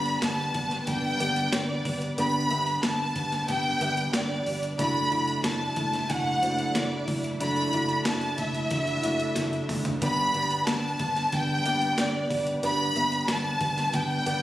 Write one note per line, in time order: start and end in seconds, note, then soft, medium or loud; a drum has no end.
0.00 0.16 G1 medium
0.00 0.50 G2 medium
0.00 0.21 G3 soft
0.00 4.75 G3 medium
0.00 0.21 B3 medium
0.00 1.20 B3 medium
0.00 0.22 D4 medium
0.00 1.20 D4 medium
0.00 14.42 D4 medium
0.00 0.22 G4 medium
0.00 1.20 G4 medium
0.00 1.20 B4 medium
0.00 4.75 B4 medium
0.00 1.20 D5 medium
0.00 0.18 B5 loud
0.06 closed hi-hat soft
0.22 0.49 G1 medium
0.22 0.55 G3 medium
0.22 0.55 B3 medium
0.22 0.54 D4 medium
0.22 0.54 G4 medium
0.22 0.80 A5 loud
0.22 snare loud
0.22 closed hi-hat medium
0.54 0.81 G1 medium
0.54 0.87 G3 soft
0.54 0.87 B3 soft
0.54 0.88 D4 medium
0.54 0.87 G4 medium
0.54 kick medium
0.54 closed hi-hat medium
0.71 snare soft
0.71 closed hi-hat soft
0.81 0.87 A5 medium
0.87 1.14 G1 medium
0.87 1.20 G2 medium
0.87 1.20 D3 medium
0.87 1.21 G3 loud
0.87 1.21 B3 medium
0.87 1.20 D4 medium
0.87 1.19 G4 medium
0.87 1.53 G5 loud
0.87 kick medium
0.87 closed hi-hat medium
1.20 1.47 G1 medium
1.20 1.51 G3 soft
1.20 1.94 B3 medium
1.20 1.52 B3 medium
1.20 1.94 D4 medium
1.20 1.53 D4 medium
1.20 1.95 G4 medium
1.20 1.53 G4 medium
1.20 1.95 B4 medium
1.20 1.95 D5 medium
1.20 closed hi-hat medium
1.36 closed hi-hat medium
1.52 1.80 G1 loud
1.52 1.85 G3 medium
1.52 1.86 B3 medium
1.52 1.85 D4 medium
1.52 1.84 G4 medium
1.52 2.02 D5 medium
1.52 snare loud
1.52 closed hi-hat loud
1.85 2.12 G1 medium
1.85 2.17 G3 soft
1.85 2.17 B3 medium
1.85 2.18 D4 medium
1.85 2.18 G4 medium
1.85 kick medium
1.85 open hi-hat medium
2.02 closed hi-hat medium
2.18 2.45 G1 loud
2.18 2.51 G2 medium
2.18 3.12 G2 medium
2.18 2.51 D3 medium
2.18 2.51 G3 medium
2.18 2.43 B3 medium
2.18 2.51 B3 loud
2.18 2.43 D4 medium
2.18 2.50 D4 loud
2.18 2.43 G4 medium
2.18 2.49 G4 medium
2.18 2.43 B4 medium
2.18 2.43 D5 medium
2.18 2.80 B5 loud
2.18 closed hi-hat loud
2.50 2.77 G1 loud
2.50 2.81 G3 soft
2.50 3.50 B3 medium
2.50 2.82 B3 soft
2.50 3.50 D4 medium
2.50 2.83 D4 medium
2.50 2.83 G4 medium
2.50 3.50 G4 medium
2.50 3.50 B4 medium
2.50 3.50 E5 medium
2.50 closed hi-hat medium
2.67 closed hi-hat soft
2.83 3.10 G1 medium
2.83 3.16 G3 medium
2.83 3.16 B3 medium
2.83 3.15 D4 medium
2.83 3.14 G4 medium
2.83 3.45 A5 loud
2.83 snare loud
2.83 closed hi-hat medium
3.16 3.43 G1 loud
3.16 3.48 G3 soft
3.16 3.48 B3 soft
3.16 3.48 D4 medium
3.16 3.48 G4 medium
3.16 kick medium
3.16 closed hi-hat medium
3.32 snare soft
3.32 closed hi-hat medium
3.48 3.76 G1 loud
3.48 3.81 G2 medium
3.48 3.81 D3 medium
3.48 3.81 G3 medium
3.48 3.81 B3 medium
3.48 3.81 D4 loud
3.48 3.80 G4 medium
3.48 4.14 G5 loud
3.48 kick medium
3.48 closed hi-hat medium
3.81 4.08 G1 loud
3.81 4.13 G3 soft
3.81 4.56 B3 medium
3.81 4.14 B3 medium
3.81 4.56 D4 medium
3.81 4.14 D4 medium
3.81 4.14 G4 medium
3.81 4.56 G4 medium
3.81 4.56 B4 medium
3.81 4.56 E5 medium
3.81 closed hi-hat medium
3.97 closed hi-hat medium
4.13 4.40 G1 loud
4.13 4.46 G3 medium
4.13 4.47 B3 medium
4.13 4.46 D4 medium
4.13 4.45 G4 medium
4.13 4.60 D5 medium
4.13 snare loud
4.13 closed hi-hat loud
4.46 4.73 G1 loud
4.46 4.79 G3 soft
4.46 4.80 B3 soft
4.46 4.79 D4 medium
4.46 4.79 G4 medium
4.46 open hi-hat medium
4.63 closed hi-hat medium
4.79 5.06 F#1 loud
4.79 5.12 F#3 medium
4.79 9.98 F#3 medium
4.79 5.12 A3 medium
4.79 5.04 D4 medium
4.79 5.12 D4 medium
4.79 5.04 E4 medium
4.79 9.98 E4 medium
4.79 5.11 E4 loud
4.79 5.04 F#4 medium
4.79 5.04 A4 medium
4.79 5.04 D5 medium
4.79 5.41 B5 loud
4.79 kick loud
4.79 closed hi-hat loud
5.11 5.38 F#1 loud
5.11 5.44 A3 soft
5.11 6.11 D4 medium
5.11 5.44 D4 medium
5.11 6.11 E4 medium
5.11 5.45 E4 medium
5.11 6.11 F#4 medium
5.11 6.11 A4 medium
5.11 6.11 D5 medium
5.11 closed hi-hat medium
5.28 closed hi-hat soft
5.44 5.71 F#1 loud
5.44 5.77 F#3 medium
5.44 5.77 A3 medium
5.44 5.77 D4 medium
5.44 5.76 E4 medium
5.44 6.10 A5 loud
5.44 snare loud
5.44 closed hi-hat medium
5.76 6.04 F#1 loud
5.76 6.09 A3 soft
5.76 6.09 D4 medium
5.76 6.09 E4 medium
5.76 kick medium
5.76 closed hi-hat medium
5.93 snare soft
5.93 closed hi-hat soft
6.09 6.37 F#1 loud
6.09 6.42 F#3 medium
6.09 6.43 A3 medium
6.09 6.42 D4 medium
6.09 6.41 E4 medium
6.09 6.76 F#5 loud
6.09 kick medium
6.09 closed hi-hat medium
6.42 6.69 F#1 loud
6.42 6.74 A3 soft
6.42 7.17 D4 medium
6.42 6.75 D4 medium
6.42 6.75 E4 medium
6.42 7.17 E4 medium
6.42 7.17 F#4 medium
6.42 7.17 A4 medium
6.42 6.49 C5 medium
6.42 closed hi-hat medium
6.49 7.20 D5 medium
6.59 closed hi-hat medium
6.75 7.02 F#1 loud
6.75 7.08 F#3 medium
6.75 7.08 A3 medium
6.75 7.07 D4 medium
6.75 7.06 E4 medium
6.75 7.24 D5 medium
6.75 snare loud
6.75 closed hi-hat loud
7.07 7.35 F#1 loud
7.07 7.39 A3 soft
7.07 7.40 D4 soft
7.07 7.40 E4 medium
7.07 kick medium
7.07 open hi-hat medium
7.24 closed hi-hat medium
7.40 7.67 F#1 loud
7.40 7.73 F#3 medium
7.40 7.73 A3 loud
7.40 7.65 D4 medium
7.40 7.72 D4 loud
7.40 7.65 E4 medium
7.40 7.72 E4 medium
7.40 7.65 F#4 medium
7.40 7.65 A4 medium
7.40 7.65 D5 medium
7.40 8.02 B5 loud
7.40 closed hi-hat loud
7.56 closed hi-hat soft
7.73 8.00 F#1 medium
7.73 8.05 A3 medium
7.73 8.73 D4 medium
7.73 8.06 D4 medium
7.73 8.06 E4 medium
7.73 8.73 E4 medium
7.73 8.73 F#4 medium
7.73 8.73 A4 medium
7.73 8.73 D5 medium
7.73 closed hi-hat medium
7.89 closed hi-hat soft
8.05 8.38 F#3 medium
8.05 8.38 A3 medium
8.05 8.38 D4 medium
8.05 8.37 E4 medium
8.05 8.37 A5 medium
8.05 snare loud
8.05 closed hi-hat medium
8.21 closed hi-hat soft
8.38 8.65 F#1 loud
8.38 8.70 A3 soft
8.38 8.71 D4 soft
8.38 8.71 E4 medium
8.38 9.70 E5 medium
8.38 kick medium
8.38 closed hi-hat medium
8.55 closed hi-hat medium
8.71 8.98 F#1 loud
8.71 9.04 F#3 medium
8.71 9.04 A3 medium
8.71 9.04 D4 medium
8.71 9.02 E4 medium
8.71 kick medium
8.71 closed hi-hat medium
8.87 closed hi-hat soft
9.03 9.31 F#1 medium
9.03 9.36 A3 soft
9.03 9.78 D4 medium
9.03 9.36 D4 soft
9.03 9.36 E4 medium
9.03 9.79 E4 medium
9.03 9.79 F#4 medium
9.03 9.79 A4 medium
9.03 9.79 D5 medium
9.03 closed hi-hat medium
9.20 closed hi-hat medium
9.36 9.64 F#1 medium
9.36 9.69 F#3 medium
9.36 9.69 A3 medium
9.36 9.69 D4 medium
9.36 9.67 E4 medium
9.36 snare medium
9.36 closed hi-hat loud
9.53 closed hi-hat soft
9.69 9.97 F#1 medium
9.69 10.02 A3 soft
9.69 10.01 D4 medium
9.69 10.01 E4 medium
9.69 mid tom medium
9.69 open hi-hat medium
9.85 closed hi-hat medium
9.85 floor tom medium
10.01 10.29 G1 loud
10.01 10.34 G2 medium
10.01 10.96 G2 medium
10.01 10.34 D3 medium
10.01 14.42 G3 medium
10.01 10.34 G3 loud
10.01 10.27 B3 medium
10.01 10.34 B3 medium
10.01 10.27 D4 medium
10.01 10.33 D4 medium
10.01 10.27 G4 medium
10.01 10.32 G4 medium
10.01 14.42 B4 medium
10.01 10.27 B4 medium
10.01 10.27 D5 medium
10.01 10.64 B5 loud
10.01 kick loud
10.01 closed hi-hat loud
10.33 10.62 G1 medium
10.33 10.65 G3 soft
10.33 10.65 B3 medium
10.33 11.34 B3 medium
10.33 10.66 D4 medium
10.33 11.34 D4 medium
10.33 10.67 G4 medium
10.33 11.34 G4 medium
10.33 11.34 B4 medium
10.33 11.34 D5 medium
10.33 closed hi-hat medium
10.50 closed hi-hat soft
10.66 10.94 G1 loud
10.66 10.99 G3 medium
10.66 10.99 B3 medium
10.66 10.99 D4 medium
10.66 10.98 G4 medium
10.66 11.33 A5 loud
10.66 snare loud
10.66 closed hi-hat medium
10.99 11.26 G1 loud
10.99 11.31 G3 soft
10.99 11.32 B3 medium
10.99 11.32 D4 medium
10.99 11.32 G4 medium
10.99 kick medium
10.99 closed hi-hat medium
11.16 snare soft
11.16 closed hi-hat soft
11.32 11.59 G1 medium
11.32 11.65 G2 medium
11.32 11.65 D3 medium
11.32 11.65 G3 loud
11.32 11.65 B3 medium
11.32 11.64 D4 medium
11.32 11.63 G4 medium
11.32 11.98 G5 loud
11.32 kick medium
11.32 closed hi-hat medium
11.64 11.92 G1 medium
11.64 11.96 G3 soft
11.64 12.40 B3 medium
11.64 11.97 B3 soft
11.64 11.97 D4 medium
11.64 12.40 D4 medium
11.64 11.97 G4 medium
11.64 12.40 G4 medium
11.64 12.40 B4 medium
11.64 12.40 D5 medium
11.64 closed hi-hat medium
11.82 closed hi-hat medium
11.97 12.25 G1 loud
11.97 12.30 G3 medium
11.97 12.30 B3 medium
11.97 12.30 D4 medium
11.97 12.29 G4 medium
11.97 12.48 D5 medium
11.97 snare loud
11.97 closed hi-hat loud
12.30 12.57 G1 medium
12.30 12.62 G3 soft
12.30 12.62 B3 medium
12.30 12.63 D4 medium
12.30 12.63 G4 medium
12.30 kick medium
12.30 open hi-hat medium
12.47 closed hi-hat medium
12.63 12.90 G1 loud
12.63 12.95 G2 medium
12.63 13.57 G2 medium
12.63 12.96 D3 medium
12.63 12.95 G3 medium
12.63 12.88 B3 medium
12.63 12.95 B3 medium
12.63 12.88 D4 medium
12.63 12.94 D4 loud
12.63 12.88 G4 medium
12.63 12.93 G4 loud
12.63 12.88 B4 medium
12.63 12.88 D5 medium
12.63 13.25 B5 loud
12.63 closed hi-hat loud
12.95 13.22 G1 loud
12.95 13.26 G3 soft
12.95 13.95 B3 medium
12.95 13.27 B3 medium
12.95 13.28 D4 medium
12.95 13.95 D4 medium
12.95 13.28 G4 medium
12.95 13.95 G4 medium
12.95 13.95 B4 medium
12.95 13.95 E5 medium
12.95 closed hi-hat medium
13.12 closed hi-hat soft
13.28 13.55 G1 loud
13.28 13.60 G3 medium
13.28 13.61 B3 medium
13.28 13.60 D4 medium
13.28 13.59 G4 medium
13.28 13.94 A5 loud
13.28 snare loud
13.28 closed hi-hat medium
13.61 13.87 G1 loud
13.61 13.93 G3 soft
13.61 13.93 B3 soft
13.61 13.94 D4 medium
13.61 13.93 G4 medium
13.61 kick medium
13.61 closed hi-hat medium
13.77 snare soft
13.77 closed hi-hat medium
13.93 14.20 G1 loud
13.93 14.26 G2 medium
13.93 14.26 D3 medium
13.93 14.27 G3 medium
13.93 14.27 B3 loud
13.93 14.26 D4 loud
13.93 14.25 G4 medium
13.93 14.42 G5 loud
13.93 kick medium
13.93 closed hi-hat medium
14.26 14.42 G1 medium
14.26 14.42 G3 medium
14.26 14.42 B3 medium
14.26 14.42 D4 medium
14.26 14.42 G4 medium
14.26 14.42 B4 medium
14.26 14.42 D5 medium
14.26 closed hi-hat medium